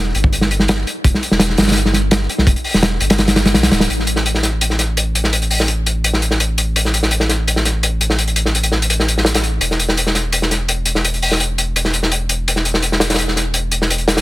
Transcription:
Already playing: sub bass E1
0.15 sub bass G1, closed hi-hat
0.24 kick
0.33 closed hi-hat
0.41 snare
0.51 closed hi-hat
0.59 snare
0.68 snare, closed hi-hat
0.87 closed hi-hat
1.04 sub bass E1, kick, closed hi-hat
1.14 snare
1.23 closed hi-hat
1.31 sub bass E1, snare
1.39 snare, closed hi-hat
1.50 snare
1.57 sub bass G1, snare, closed hi-hat
1.62 snare, closed hi-hat
1.67 snare, closed hi-hat
1.72 snare, closed hi-hat
1.76 closed hi-hat
1.85 snare
1.93 snare, closed hi-hat
2.11 snare, closed hi-hat
2.29 closed hi-hat
2.38 sub bass B1, snare
2.47 sub bass E1, kick, closed hi-hat
2.56 closed hi-hat
2.64 open hi-hat
2.74 sub bass E1, snare
2.83 snare, closed hi-hat
3.00 sub bass G1, closed hi-hat
3.10 snare, closed hi-hat
3.18 snare, closed hi-hat
3.28 snare, closed hi-hat
3.36 snare, closed hi-hat
3.45 snare, closed hi-hat
3.54 sub bass B1, snare, closed hi-hat
3.63 snare, closed hi-hat
3.71 sub bass D1, snare, closed hi-hat
3.80 snare, closed hi-hat
3.90 sub bass A1, closed hi-hat
3.99 snare
4.07 closed hi-hat
4.16 snare
4.26 closed hi-hat
4.34 snare
4.43 snare, closed hi-hat
4.61 closed hi-hat
4.70 snare
4.79 snare, closed hi-hat
4.97 closed hi-hat
5.15 closed hi-hat
5.24 snare
5.33 closed hi-hat
5.42 closed hi-hat
5.50 open hi-hat
5.60 snare
5.68 closed hi-hat
5.86 closed hi-hat
6.04 closed hi-hat
6.13 snare
6.22 closed hi-hat
6.31 snare
6.40 closed hi-hat
6.58 closed hi-hat
6.76 closed hi-hat
6.85 snare
6.94 closed hi-hat
7.03 snare
7.11 closed hi-hat
7.20 snare
7.29 snare, closed hi-hat
7.48 closed hi-hat
7.56 snare
7.65 snare, closed hi-hat
7.83 closed hi-hat
8.01 closed hi-hat
8.10 snare
8.19 closed hi-hat
8.27 closed hi-hat
8.36 closed hi-hat
8.45 snare
8.55 closed hi-hat
8.63 closed hi-hat
8.72 snare
8.82 closed hi-hat
8.90 closed hi-hat
9.00 snare
9.08 closed hi-hat
9.18 snare
9.25 snare, closed hi-hat
9.34 snare, closed hi-hat
9.43 closed hi-hat
9.61 sub bass E1, closed hi-hat
9.71 snare
9.79 closed hi-hat
9.88 snare
9.97 closed hi-hat
10.06 snare
10.15 snare, closed hi-hat
10.32 closed hi-hat
10.42 snare
10.51 snare, closed hi-hat
10.68 closed hi-hat
10.85 closed hi-hat
10.95 snare
11.04 closed hi-hat
11.14 closed hi-hat
11.22 open hi-hat
11.31 snare
11.40 closed hi-hat
11.58 closed hi-hat
11.76 closed hi-hat
11.85 snare
11.94 closed hi-hat
12.03 snare
12.12 closed hi-hat
12.29 closed hi-hat
12.48 closed hi-hat
12.56 snare
12.65 closed hi-hat
12.74 snare
12.82 closed hi-hat
12.92 snare
13.00 snare, closed hi-hat
13.10 snare, closed hi-hat
13.14 snare, closed hi-hat
13.18 closed hi-hat
13.28 snare
13.36 snare, closed hi-hat
13.54 closed hi-hat
13.71 closed hi-hat
13.82 snare
13.90 closed hi-hat
13.98 closed hi-hat
14.08 snare, closed hi-hat
14.17 snare, closed hi-hat

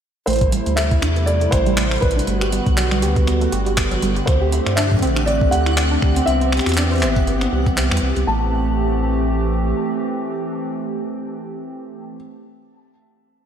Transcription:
0.26 sub bass A1, analog synth pad C3 G3 A3 E4, synth pluck A3, felt piano C5, synth texture F#5, closed hi-hat
0.30 closed hi-hat
0.33 closed hi-hat
0.36 closed hi-hat
0.39 closed hi-hat
0.41 kick, closed hi-hat
0.52 synth pluck G3, closed hi-hat
0.66 sub bass D2, synth pluck A3, closed hi-hat
0.76 synth pluck A4, felt piano E5, clap, closed hi-hat
0.91 kick, closed hi-hat
1.02 sub bass E2, synth pluck D4, finger snap, closed hi-hat
1.16 synth pluck B3, closed hi-hat
1.26 synth pluck A4, felt piano D5, closed hi-hat
1.41 synth pluck A3, closed hi-hat
1.51 sub bass A1, felt piano C5, finger snap, kick, closed hi-hat
1.66 synth pluck G3, closed hi-hat
1.77 synth pluck A3, clap
1.91 synth pluck A4, finger snap, closed hi-hat
1.94 closed hi-hat
1.96 closed hi-hat
1.98 closed hi-hat
2.00 sub bass A1, felt piano B4, closed hi-hat
2.02 kick, closed hi-hat
2.11 closed hi-hat
2.16 synth pluck D4, closed hi-hat
2.27 sub bass G1, analog synth pad D3 B3 F#4, synth pluck A3, closed hi-hat
2.41 synth pluck G4, finger snap, closed hi-hat
2.52 synth pluck G3, closed hi-hat
2.66 sub bass B1, kick, closed hi-hat
2.77 synth pluck F#3, clap, closed hi-hat
2.91 synth pluck G3, finger snap, closed hi-hat
3.02 sub bass D2, synth pluck G4, closed hi-hat
3.16 kick, closed hi-hat
3.27 synth pluck B3, finger snap, closed hi-hat
3.41 synth pluck A3, closed hi-hat
3.52 sub bass G1, synth pluck G4, closed hi-hat
3.66 synth pluck G3, closed hi-hat
3.77 finger snap, kick, clap, closed hi-hat
3.91 synth pluck F#3, closed hi-hat
4.02 sub bass G1, synth pluck G3, closed hi-hat
4.16 synth pluck G4, closed hi-hat
4.26 sub bass D2, analog synth pad A3 C4 G4, felt piano C5, finger snap, kick, closed hi-hat
4.41 synth pluck G4
4.52 synth pluck E4, closed hi-hat
4.66 sub bass G2, synth pluck D5, finger snap, closed hi-hat
4.76 synth pluck D4, felt piano E5, clap, closed hi-hat
4.91 kick, closed hi-hat
4.94 kick
4.97 kick, closed hi-hat
5.00 sub bass A1, synth pluck C4, kick, closed hi-hat
5.16 synth pluck D4, finger snap, closed hi-hat
5.26 felt piano D5, synth pluck D5, closed hi-hat
5.41 kick
5.51 sub bass D2, synth pluck G4, felt piano F#5, closed hi-hat
5.66 synth pluck E4, finger snap, closed hi-hat
5.77 synth pluck D5, clap, closed hi-hat
5.91 synth pluck D4
6.02 sub bass D2, finger snap, kick
6.16 synth pluck C4, closed hi-hat
6.26 sub bass C2, analog synth pad E3 B3, synth pluck C4, felt piano E5, closed hi-hat
6.41 synth pluck C5, closed hi-hat
6.52 finger snap, closed hi-hat
6.57 finger snap, closed hi-hat
6.61 closed hi-hat
6.66 sub bass E2, synth pluck F#4, finger snap, closed hi-hat
6.69 finger snap, closed hi-hat
6.74 clap, closed hi-hat
6.77 synth pluck D4, closed hi-hat
6.91 synth pluck C5, closed hi-hat
6.93 closed hi-hat
6.96 closed hi-hat
6.98 closed hi-hat
7.00 sub bass G1, finger snap, clap, closed hi-hat
7.02 synth pluck C4, closed hi-hat
7.16 kick, closed hi-hat
7.27 synth pluck B3, closed hi-hat
7.41 synth pluck C4, finger snap, closed hi-hat
7.52 sub bass C2, synth pluck G4
7.66 kick, closed hi-hat
7.77 synth pluck C4, clap, closed hi-hat
7.91 sub bass E2, synth pluck G3, finger snap, closed hi-hat
7.97 closed hi-hat
8.02 sub bass C2, synth pluck C4
8.16 sub bass C2, synth pluck G4, closed hi-hat
8.27 sub bass A1, analog synth pad E3 A3 C4 G4, synth pluck A3, felt piano A5

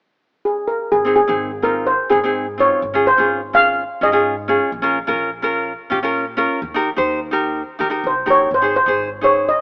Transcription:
0.45 steel pan G#4
0.68 steel pan A#4
0.92 upright bass G#1, steel pan G#4
1.05 ukulele C4 D#4 G#4
1.16 steel pan G#4
1.28 upright bass G#1, ukulele C4 D#4 G#4
1.62 ukulele C4 D#4 F4, steel pan A#4
1.87 steel pan C5
2.10 upright bass G#2, ukulele C4 D#4 G#4, steel pan G#4
2.24 ukulele C4 D#4 G#4
2.58 ukulele C4 D#4 F4, steel pan C#5
2.82 upright bass G#1
2.94 ukulele C#4 F4 G#4
3.07 steel pan C5
3.18 upright bass G#1, ukulele C#4 F4 G#4
3.53 ukulele C#4 F4 G#4, steel pan F5
4.01 upright bass G#2, ukulele C#4 F4 G#4, steel pan D#5
4.12 ukulele C#4 F4 G#4
4.48 ukulele C#4 F4 G#4
4.72 upright bass A#1
4.82 ukulele C#4 F4 A#4
5.07 upright bass A#1, ukulele C#4 F4 A#4
5.42 ukulele C#4 F4 A#4
5.90 upright bass A#2, ukulele C#4 F4 G4
6.03 ukulele C#4 F4 A#4
6.37 ukulele C#4 F4 A#4
6.62 upright bass D#2
6.74 ukulele D#4 G4 A#4
6.96 upright bass D#2, ukulele D#4 G4 C5
7.31 ukulele D#4 G4 A#4
7.79 upright bass D#3, ukulele D#4 G4 A#4
7.90 ukulele D#4 G4 A#4
8.04 upright bass C2, steel pan C5
8.26 upright bass A#1, ukulele D#4 G4 A#4
8.30 steel pan C#5
8.51 upright bass G#1, steel pan C5
8.62 ukulele D#4 G#4 C5
8.76 steel pan C5
8.86 upright bass G#1, ukulele D#4 G#4 C5
9.21 ukulele D#4 G#4 C5, steel pan C#5
9.49 steel pan D#5

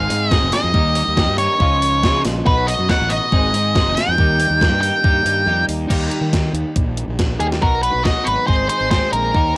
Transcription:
Already playing: clean electric guitar G#2 D#3 G#3 D#4, lead electric guitar F5
0.09 fingered electric bass G#2, clean electric guitar G#3 C4 D#4 G#4, open hi-hat
0.31 clean electric guitar G#2 D#3 G#3 C4 D#4 G#4, lead electric guitar D#5, kick, snare
0.42 fingered electric bass F1
0.52 clean electric guitar G#3 C4 D#4 G#4, lead electric guitar D#5, snare, open hi-hat
0.64 fingered electric bass F2
0.74 fingered electric bass D#2, clean electric guitar D#3 G3 A#3 D#4 G4, kick
0.95 clean electric guitar A#3 D#4 G4, open hi-hat
1.08 fingered electric bass D#2
1.16 clean electric guitar G3 A#3 D#4 G4, kick, snare
1.29 fingered electric bass G2
1.38 clean electric guitar D#3 G3 A#3 D#4 G4, lead electric guitar C#5, open hi-hat
1.59 fingered electric bass C#2, clean electric guitar C#3 F3 G#3 D#4 F4, kick
1.80 clean electric guitar G#3 D#4 F4, open hi-hat
2.02 clean electric guitar C#3 F3 G#3 D#4 F4, fingered electric bass C#3, kick, snare
2.24 fingered electric bass A#1, clean electric guitar G#3 D#4 F4, snare, open hi-hat
2.45 fingered electric bass B1, clean electric guitar B2 F#3 B3 D#4 F#4, lead electric guitar B4, kick
2.67 clean electric guitar B3 D#4 F#4, lead electric guitar D#5, open hi-hat
2.79 fingered electric bass F#2
2.89 clean electric guitar F#3 B3 D#4 F#4, lead electric guitar F#5, kick, snare
3.00 fingered electric bass A1
3.09 clean electric guitar B2 F#3 B3 D#4 F#4, lead electric guitar D#5, open hi-hat
3.32 fingered electric bass G#1, clean electric guitar G#2 D#3 G#3 C4 D#4 G#4, kick
3.53 fingered electric bass G#2, clean electric guitar G#3 C4 D#4 G#4, open hi-hat
3.75 clean electric guitar G#2 D#3 G#3 C4 D#4 G#4, kick, snare
3.86 fingered electric bass F1
3.95 clean electric guitar G#3 C4 D#4 G#4, lead electric guitar G5, snare, open hi-hat
4.08 fingered electric bass F2
4.17 fingered electric bass D#2, clean electric guitar D#3 G3 A#3 D#4 G4, kick
4.39 clean electric guitar A#3 D#4 G4, open hi-hat
4.50 fingered electric bass D#2
4.61 clean electric guitar G3 A#3 D#4 G4, kick, snare
4.72 fingered electric bass G2
4.81 clean electric guitar D#3 G3 A#3 D#4 G4, lead electric guitar G5, open hi-hat
5.03 fingered electric bass G2, clean electric guitar D#3 G3 A#3 D#4 G4, kick
5.25 fingered electric bass G2, clean electric guitar A#3 D#4 G4, open hi-hat
5.46 fingered electric bass F2, clean electric guitar D#3 G3 A#3 D#4 G4
5.68 fingered electric bass D#2, clean electric guitar A#3 D#4 G4, open hi-hat
5.89 fingered electric bass D#2, clean electric guitar D#3 G3 A#3 D#4 G4, kick, closed hi-hat, crash
6.11 closed hi-hat
6.21 fingered electric bass D#3
6.33 kick, snare, closed hi-hat
6.53 fingered electric bass D#2, closed hi-hat
6.76 fingered electric bass A#1, kick, closed hi-hat
6.97 closed hi-hat
7.07 fingered electric bass A#1
7.19 kick, snare, closed hi-hat
7.39 fingered electric bass D#2, clean electric guitar D#3 G3 A#3 D#4 G4, lead electric guitar G#4, closed hi-hat
7.52 snare
7.61 fingered electric bass B1, clean electric guitar B2 F#3 B3 D#4 F#4, lead electric guitar A#4, kick
7.83 clean electric guitar F#3 B3 D#4 F#4, lead electric guitar B4, closed hi-hat
7.94 fingered electric bass B1
8.04 clean electric guitar F#3 B3 D#4 F#4, lead electric guitar D#5, kick, snare
8.25 fingered electric bass G#1, clean electric guitar F#3 B3 D#4 F#4, lead electric guitar B4, closed hi-hat
8.47 fingered electric bass G#1, clean electric guitar G#2 D#3 G#3 C4 D#4 G#4, lead electric guitar C5, kick
8.69 clean electric guitar G#3 C4 D#4 G#4, lead electric guitar C5, closed hi-hat
8.81 fingered electric bass G#1
8.90 clean electric guitar G#2 D#3 G#3 C4 D#4 G#4, lead electric guitar C5, kick, snare
9.13 fingered electric bass A#1, clean electric guitar G#3 C4 D#4 G#4, lead electric guitar A#4, closed hi-hat
9.34 fingered electric bass D#2, clean electric guitar D#3 G3 A#3 D#4 G4, kick

